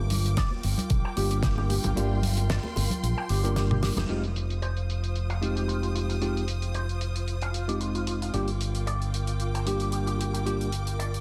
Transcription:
Already playing: fingered electric bass G1, string section F4 A#4 G5 D6
0.10 open hi-hat, low conga
0.26 closed hi-hat
0.37 clean electric guitar D5, kick, snare, closed hi-hat
0.51 high conga
0.63 fingered electric bass G1, open hi-hat
0.78 closed hi-hat, low conga
0.90 fingered electric bass A#1, kick, closed hi-hat
1.05 clean electric guitar G5
1.16 fingered electric bass G1, tine electric piano G3 A#3 D4 F4 G4, clean electric guitar G4, open hi-hat
1.31 clean electric guitar G4, closed hi-hat
1.43 clean electric guitar G4, kick, snare, closed hi-hat
1.58 clean electric guitar G4, high bongo
1.70 clean electric guitar G4, open hi-hat, high conga
1.84 fingered electric bass G1, clean electric guitar G4, closed hi-hat, high bongo, low conga
1.96 fingered electric bass G1, tine electric piano G3 A#3 D4 F4 G4, clean electric guitar G4, string section C6, closed hi-hat
2.22 open hi-hat, low conga
2.37 closed hi-hat, high bongo
2.50 clean electric guitar D5, snare, closed hi-hat
2.64 high bongo, high conga
2.76 fingered electric bass G1, open hi-hat, high bongo
2.90 closed hi-hat, low conga
3.03 fingered electric bass A#1, closed hi-hat
3.17 clean electric guitar G5
3.29 fingered electric bass G1, clean electric guitar G4, open hi-hat
3.43 tine electric piano G3 A#3 D4 F4 A#4, clean electric guitar G4, closed hi-hat, high bongo
3.56 clean electric guitar G4, snare, closed hi-hat
3.71 clean electric guitar G4, high tom
3.83 clean electric guitar G4, snare, open hi-hat, high conga
3.96 fingered electric bass F1, clean electric guitar G4, snare, closed hi-hat, low conga
4.09 fingered electric bass F1, tine electric piano G#3 C4 D#4 F4 G4, clean electric guitar F4, string section F4 C5 D#6, closed hi-hat
4.24 closed hi-hat
4.36 closed hi-hat
4.50 closed hi-hat
4.62 clean electric guitar C5, closed hi-hat
4.77 closed hi-hat
4.90 closed hi-hat
5.04 closed hi-hat
5.16 closed hi-hat
5.30 clean electric guitar F5, closed hi-hat
5.41 tine electric piano G#3 C4 D#4 F4 G4, clean electric guitar F4, closed hi-hat
5.56 clean electric guitar G4, closed hi-hat
5.68 clean electric guitar F4, closed hi-hat
5.83 clean electric guitar F4, closed hi-hat
5.95 clean electric guitar F4, closed hi-hat
6.09 clean electric guitar F4, closed hi-hat
6.21 tine electric piano G#3 C4 D#4 F4 G4, clean electric guitar F4, closed hi-hat
6.37 closed hi-hat
6.48 closed hi-hat
6.62 closed hi-hat
6.74 clean electric guitar C5, closed hi-hat
6.89 closed hi-hat
7.01 closed hi-hat
7.16 closed hi-hat
7.28 closed hi-hat
7.42 clean electric guitar F5, closed hi-hat
7.54 clean electric guitar F4, closed hi-hat
7.68 tine electric piano G#3 C4 D#4 F4, clean electric guitar G4, closed hi-hat
7.81 clean electric guitar F4, closed hi-hat
7.95 clean electric guitar F4, closed hi-hat
8.07 clean electric guitar F4, closed hi-hat
8.22 clean electric guitar F4, closed hi-hat
8.33 fingered electric bass G1, tine electric piano G3 A#3 D4 F4 G4, clean electric guitar G4, string section A#4 G5 D6, closed hi-hat
8.48 closed hi-hat
8.61 closed hi-hat
8.75 closed hi-hat
8.87 clean electric guitar D5, closed hi-hat
9.02 closed hi-hat
9.14 closed hi-hat
9.27 closed hi-hat
9.40 closed hi-hat
9.54 clean electric guitar G5, closed hi-hat
9.66 tine electric piano G3 A#3 D4 F4 G4, clean electric guitar G4, closed hi-hat
9.80 clean electric guitar G4, closed hi-hat
9.92 clean electric guitar G4, closed hi-hat
10.07 clean electric guitar G4, closed hi-hat
10.19 clean electric guitar G4, closed hi-hat
10.34 clean electric guitar G4, closed hi-hat
10.46 tine electric piano G3 A#3 D4 F4 G4, clean electric guitar G4, closed hi-hat
10.61 closed hi-hat
10.72 closed hi-hat
10.87 closed hi-hat
10.99 clean electric guitar D5, closed hi-hat
11.14 closed hi-hat

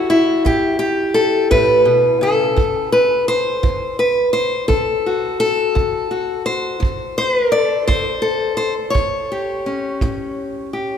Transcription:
Already playing: steel-string acoustic guitar E3 F#4
0.10 steel-string acoustic guitar E4
0.45 steel-string acoustic guitar A2 G4, kick
0.79 steel-string acoustic guitar G4
1.14 steel-string acoustic guitar A4
1.51 steel-string acoustic guitar A2 B4, kick
1.85 steel-string acoustic guitar B2
2.21 steel-string acoustic guitar C#3 A4
2.56 steel-string acoustic guitar D3, kick
2.92 steel-string acoustic guitar B4
3.28 steel-string acoustic guitar C5
3.63 steel-string acoustic guitar D3, kick
3.99 steel-string acoustic guitar B4
4.33 steel-string acoustic guitar C5
4.68 steel-string acoustic guitar D3 A4, kick
5.06 steel-string acoustic guitar F#4
5.40 steel-string acoustic guitar A4
5.75 steel-string acoustic guitar D3, kick
6.11 steel-string acoustic guitar F#4
6.46 steel-string acoustic guitar C5
6.80 steel-string acoustic guitar D3, kick
7.18 steel-string acoustic guitar B4
7.45 steel-string acoustic guitar A#4
7.52 steel-string acoustic guitar D5
7.63 steel-string acoustic guitar A4
7.87 steel-string acoustic guitar D3 C5, kick
8.22 steel-string acoustic guitar A4
8.57 steel-string acoustic guitar C5
8.90 steel-string acoustic guitar C#5
8.94 steel-string acoustic guitar A2, kick
9.32 steel-string acoustic guitar G4
9.66 steel-string acoustic guitar C#4
10.01 steel-string acoustic guitar A2, kick
10.73 steel-string acoustic guitar G4

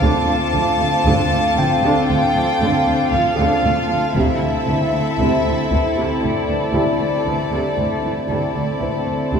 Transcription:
Already playing: grand piano G5, violin section D6 A6
0.00 cello section D2, double bass section D2, viola section D3 C4, violin section F4 A4 A5, glass harmonica C5 F5 A5
0.27 cello section D2, viola section A3
0.54 double bass section D2, cello section D2, viola section F3
0.79 cello section D2, viola section A3
1.05 double bass section D2, cello section D2, viola section D3
1.31 cello section D2, viola section A3
1.57 cello section D2, double bass section D2, viola section F3, grand piano G5
1.83 cello section D2, viola section D3
2.07 double bass section D2, cello section D2, viola section A3, violin section G5
2.35 cello section D2, viola section F3
2.60 double bass section D2, cello section D2, viola section D3
2.87 cello section D2, viola section A3
3.11 double bass section D2, cello section D2, viola section F3, violin section F5
3.39 cello section D2, viola section D3
3.63 double bass section D2, cello section D2, viola section A3
3.90 cello section D2, viola section F3
4.14 double bass section D2, cello section D2, viola section C3 C4, timpani D3, violin section E4 A4 E5, glass harmonica C5 E5 A5, taiko
4.42 cello section D2, viola section A3
4.67 double bass section D2, cello section D2, viola section E3
4.94 cello section D2, viola section A3
5.19 double bass section D2, cello section D2, viola section C3
5.45 cello section D2, viola section A3
5.70 double bass section D2, cello section D2, viola section E3, taiko
5.96 cello section D2, viola section C3
6.22 double bass section D2, cello section D2, viola section A3, violin section D5
6.48 cello section D2, viola section E3
6.73 double bass section D2, cello section D2, viola section C3, grand piano E4 E5
7.00 cello section D2, viola section A3
7.26 double bass section D2, cello section D2, viola section E3
7.52 cello section D2, viola section C3
7.77 double bass section D2, cello section D2, viola section A3
8.03 cello section D2, viola section E3
8.27 double bass section D2, cello section D2, viola section C3 C4, violin section E4 A4 D5, glass harmonica C5 E5 A5
8.55 cello section D2, viola section A3
8.80 double bass section D2, cello section D2, viola section E3, grand piano C5
9.07 cello section D2, viola section A3
9.31 double bass section D2, cello section D2, viola section C3, violin section C5

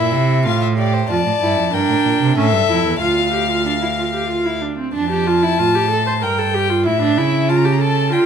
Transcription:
Already playing: cello A#2, violin E4 E5
0.13 cello C3
0.45 cello A2, violin F4 F5
0.62 violin E5
0.78 violin G4 D5
0.94 violin C5
1.09 cello F2, viola F4, violin D5 A5
1.26 cello A2
1.41 cello G2, viola E4
1.58 cello F2
1.73 cello G2, viola D4, violin A#4 G5
1.89 cello A2
2.05 cello A#2
2.21 cello C3
2.37 cello A2, viola C#4, violin A4 E5
2.53 cello G2
2.69 cello F2, viola E4
2.85 cello E2
3.01 cello D2, viola F4, violin F5
3.33 viola G4
3.50 viola F4
3.66 viola D4
3.82 viola E4
3.98 viola F4
4.14 viola G4
4.30 viola F4
4.46 viola E4
4.62 viola D4
4.78 viola C4
4.94 cello F2, viola D4, violin A5
5.11 viola G4
5.27 viola F4
5.43 viola E4
5.59 cello A2, viola F4
5.75 viola G4
5.91 viola A4
6.07 viola C5
6.22 cello G2, viola A#4, violin G5
6.38 viola A4
6.54 viola G4
6.69 viola F4
6.86 cello A2, viola E4, violin E5
7.02 viola D4
7.17 cello C#3, viola E4
7.49 viola F4, violin A5
7.57 violin A#5
7.65 viola G4, violin A5
7.73 violin A#5
7.81 viola A4, violin A5
8.12 cello D3, viola F4, violin G5

